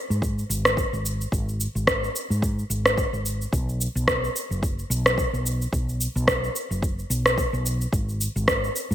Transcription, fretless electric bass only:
0, 0, Header, 1, 2, 480
1, 0, Start_track
1, 0, Tempo, 550459
1, 1153, Time_signature, 4, 2, 24, 8
1, 7803, End_track
2, 0, Start_track
2, 0, Title_t, "Fretless electric bass"
2, 0, Program_c, 0, 35
2, 88, Note_on_c, 0, 44, 71
2, 369, Note_off_c, 0, 44, 0
2, 431, Note_on_c, 0, 32, 88
2, 725, Note_off_c, 0, 32, 0
2, 808, Note_on_c, 0, 32, 81
2, 1089, Note_off_c, 0, 32, 0
2, 1152, Note_on_c, 0, 32, 87
2, 1445, Note_off_c, 0, 32, 0
2, 1527, Note_on_c, 0, 32, 83
2, 1808, Note_off_c, 0, 32, 0
2, 2008, Note_on_c, 0, 44, 78
2, 2288, Note_off_c, 0, 44, 0
2, 2352, Note_on_c, 0, 32, 91
2, 2645, Note_off_c, 0, 32, 0
2, 2727, Note_on_c, 0, 32, 76
2, 3008, Note_off_c, 0, 32, 0
2, 3075, Note_on_c, 0, 35, 94
2, 3366, Note_off_c, 0, 35, 0
2, 3447, Note_on_c, 0, 35, 93
2, 3728, Note_off_c, 0, 35, 0
2, 3928, Note_on_c, 0, 30, 75
2, 4209, Note_off_c, 0, 30, 0
2, 4272, Note_on_c, 0, 35, 87
2, 4565, Note_off_c, 0, 35, 0
2, 4648, Note_on_c, 0, 35, 80
2, 4929, Note_off_c, 0, 35, 0
2, 4992, Note_on_c, 0, 35, 90
2, 5285, Note_off_c, 0, 35, 0
2, 5367, Note_on_c, 0, 35, 97
2, 5648, Note_off_c, 0, 35, 0
2, 5846, Note_on_c, 0, 30, 73
2, 6128, Note_off_c, 0, 30, 0
2, 6190, Note_on_c, 0, 35, 85
2, 6484, Note_off_c, 0, 35, 0
2, 6565, Note_on_c, 0, 35, 91
2, 6847, Note_off_c, 0, 35, 0
2, 6911, Note_on_c, 0, 32, 89
2, 7205, Note_off_c, 0, 32, 0
2, 7287, Note_on_c, 0, 32, 84
2, 7568, Note_off_c, 0, 32, 0
2, 7766, Note_on_c, 0, 44, 78
2, 7803, Note_off_c, 0, 44, 0
2, 7803, End_track
0, 0, End_of_file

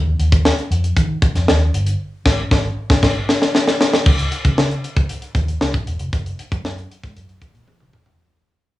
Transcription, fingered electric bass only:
0, 0, Header, 1, 2, 480
1, 0, Start_track
1, 0, Key_signature, -5, "major"
1, 0, Tempo, 516351
1, 1855, Time_signature, 4, 2, 24, 8
1, 8172, End_track
2, 0, Start_track
2, 0, Title_t, "Fingered electric bass"
2, 0, Program_c, 0, 33
2, 0, Note_on_c, 0, 39, 104
2, 122, Note_off_c, 0, 39, 0
2, 178, Note_on_c, 0, 39, 100
2, 455, Note_off_c, 0, 39, 0
2, 656, Note_on_c, 0, 41, 96
2, 841, Note_off_c, 0, 41, 0
2, 895, Note_on_c, 0, 51, 98
2, 1081, Note_off_c, 0, 51, 0
2, 1255, Note_on_c, 0, 41, 86
2, 1348, Note_off_c, 0, 41, 0
2, 1381, Note_on_c, 0, 39, 87
2, 1564, Note_off_c, 0, 39, 0
2, 1617, Note_on_c, 0, 31, 97
2, 1801, Note_off_c, 0, 31, 0
2, 2094, Note_on_c, 0, 32, 114
2, 2257, Note_off_c, 0, 32, 0
2, 2334, Note_on_c, 0, 32, 102
2, 2498, Note_off_c, 0, 32, 0
2, 2693, Note_on_c, 0, 32, 98
2, 2796, Note_off_c, 0, 32, 0
2, 2813, Note_on_c, 0, 32, 94
2, 2976, Note_off_c, 0, 32, 0
2, 3774, Note_on_c, 0, 37, 100
2, 3959, Note_off_c, 0, 37, 0
2, 4134, Note_on_c, 0, 49, 102
2, 4226, Note_off_c, 0, 49, 0
2, 4256, Note_on_c, 0, 49, 95
2, 4440, Note_off_c, 0, 49, 0
2, 4616, Note_on_c, 0, 37, 84
2, 4707, Note_off_c, 0, 37, 0
2, 4974, Note_on_c, 0, 39, 89
2, 5159, Note_off_c, 0, 39, 0
2, 5214, Note_on_c, 0, 37, 90
2, 5306, Note_off_c, 0, 37, 0
2, 5337, Note_on_c, 0, 32, 91
2, 5428, Note_off_c, 0, 32, 0
2, 5454, Note_on_c, 0, 28, 92
2, 5546, Note_off_c, 0, 28, 0
2, 5574, Note_on_c, 0, 29, 92
2, 5666, Note_off_c, 0, 29, 0
2, 5699, Note_on_c, 0, 30, 108
2, 5882, Note_off_c, 0, 30, 0
2, 6058, Note_on_c, 0, 42, 102
2, 6149, Note_off_c, 0, 42, 0
2, 6170, Note_on_c, 0, 42, 97
2, 6357, Note_off_c, 0, 42, 0
2, 6538, Note_on_c, 0, 44, 92
2, 6629, Note_off_c, 0, 44, 0
2, 6658, Note_on_c, 0, 42, 92
2, 6841, Note_off_c, 0, 42, 0
2, 7015, Note_on_c, 0, 46, 78
2, 7107, Note_off_c, 0, 46, 0
2, 7255, Note_on_c, 0, 34, 88
2, 7347, Note_off_c, 0, 34, 0
2, 7379, Note_on_c, 0, 28, 102
2, 7470, Note_off_c, 0, 28, 0
2, 7495, Note_on_c, 0, 29, 81
2, 7587, Note_off_c, 0, 29, 0
2, 8172, End_track
0, 0, End_of_file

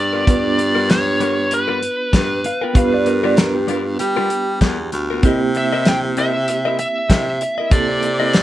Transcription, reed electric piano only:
0, 0, Header, 1, 2, 480
1, 0, Start_track
1, 0, Tempo, 619835
1, 217, Time_signature, 4, 2, 24, 8
1, 6527, End_track
2, 0, Start_track
2, 0, Title_t, "Reed electric piano"
2, 0, Program_c, 0, 4
2, 0, Note_on_c, 0, 59, 59
2, 0, Note_on_c, 0, 62, 58
2, 0, Note_on_c, 0, 65, 59
2, 0, Note_on_c, 0, 71, 73
2, 179, Note_off_c, 0, 59, 0
2, 183, Note_off_c, 0, 62, 0
2, 188, Note_off_c, 0, 65, 0
2, 192, Note_off_c, 0, 71, 0
2, 204, Note_on_c, 0, 59, 64
2, 211, Note_on_c, 0, 62, 60
2, 220, Note_on_c, 0, 65, 62
2, 229, Note_on_c, 0, 71, 75
2, 2099, Note_off_c, 0, 59, 0
2, 2102, Note_off_c, 0, 62, 0
2, 2107, Note_off_c, 0, 65, 0
2, 2111, Note_off_c, 0, 71, 0
2, 2120, Note_on_c, 0, 59, 77
2, 2129, Note_on_c, 0, 62, 63
2, 2138, Note_on_c, 0, 65, 66
2, 2145, Note_on_c, 0, 71, 80
2, 4017, Note_off_c, 0, 59, 0
2, 4022, Note_off_c, 0, 62, 0
2, 4026, Note_off_c, 0, 65, 0
2, 4030, Note_off_c, 0, 71, 0
2, 4047, Note_on_c, 0, 58, 75
2, 4057, Note_on_c, 0, 60, 73
2, 4065, Note_on_c, 0, 64, 70
2, 4072, Note_on_c, 0, 67, 85
2, 5941, Note_off_c, 0, 58, 0
2, 5946, Note_off_c, 0, 60, 0
2, 5950, Note_off_c, 0, 64, 0
2, 5954, Note_off_c, 0, 67, 0
2, 5963, Note_on_c, 0, 58, 59
2, 5972, Note_on_c, 0, 60, 53
2, 5981, Note_on_c, 0, 64, 55
2, 5988, Note_on_c, 0, 69, 72
2, 6527, Note_off_c, 0, 58, 0
2, 6527, Note_off_c, 0, 60, 0
2, 6527, Note_off_c, 0, 64, 0
2, 6527, Note_off_c, 0, 69, 0
2, 6527, End_track
0, 0, End_of_file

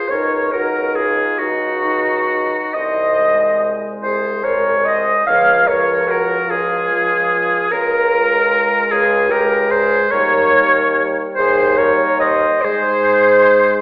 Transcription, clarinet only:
0, 0, Header, 1, 2, 480
1, 0, Start_track
1, 0, Tempo, 877193
1, 52, Time_signature, 6, 3, 24, 8
1, 1973, Tempo, 829876
1, 3413, Tempo, 808625
1, 6293, Tempo, 854701
1, 7904, End_track
2, 0, Start_track
2, 0, Title_t, "Clarinet"
2, 0, Program_c, 0, 71
2, 46, Note_on_c, 0, 73, 70
2, 283, Note_on_c, 0, 70, 67
2, 291, Note_off_c, 0, 73, 0
2, 520, Note_on_c, 0, 68, 61
2, 528, Note_off_c, 0, 70, 0
2, 758, Note_on_c, 0, 66, 65
2, 766, Note_off_c, 0, 68, 0
2, 1406, Note_off_c, 0, 66, 0
2, 1499, Note_on_c, 0, 75, 82
2, 2045, Note_off_c, 0, 75, 0
2, 2211, Note_on_c, 0, 72, 66
2, 2457, Note_on_c, 0, 73, 62
2, 2466, Note_off_c, 0, 72, 0
2, 2693, Note_on_c, 0, 75, 70
2, 2702, Note_off_c, 0, 73, 0
2, 2932, Note_off_c, 0, 75, 0
2, 2935, Note_on_c, 0, 77, 85
2, 3171, Note_on_c, 0, 73, 76
2, 3180, Note_off_c, 0, 77, 0
2, 3406, Note_on_c, 0, 70, 73
2, 3415, Note_off_c, 0, 73, 0
2, 3656, Note_on_c, 0, 68, 66
2, 3665, Note_off_c, 0, 70, 0
2, 4366, Note_off_c, 0, 68, 0
2, 4370, Note_on_c, 0, 70, 88
2, 5084, Note_on_c, 0, 68, 72
2, 5092, Note_off_c, 0, 70, 0
2, 5317, Note_on_c, 0, 70, 79
2, 5326, Note_off_c, 0, 68, 0
2, 5489, Note_off_c, 0, 70, 0
2, 5561, Note_on_c, 0, 72, 86
2, 5798, Note_on_c, 0, 73, 98
2, 5806, Note_off_c, 0, 72, 0
2, 6373, Note_off_c, 0, 73, 0
2, 6518, Note_on_c, 0, 72, 89
2, 6755, Note_on_c, 0, 73, 85
2, 6764, Note_off_c, 0, 72, 0
2, 6991, Note_off_c, 0, 73, 0
2, 6994, Note_on_c, 0, 75, 83
2, 7228, Note_on_c, 0, 72, 107
2, 7236, Note_off_c, 0, 75, 0
2, 7904, Note_off_c, 0, 72, 0
2, 7904, End_track
0, 0, End_of_file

